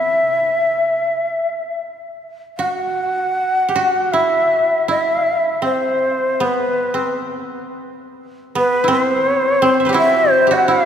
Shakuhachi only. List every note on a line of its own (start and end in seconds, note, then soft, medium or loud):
0.00 1.79 E5 medium
2.58 4.14 F#5 medium
4.13 4.89 E5 medium
4.90 5.62 E5 medium
5.65 6.46 C5 medium
6.44 7.15 B4 medium
8.57 8.90 B4 medium
8.92 9.95 C5 medium
9.98 10.32 E5 medium
10.32 10.55 C5 medium
10.53 10.72 F#5 medium
10.71 10.85 E5 medium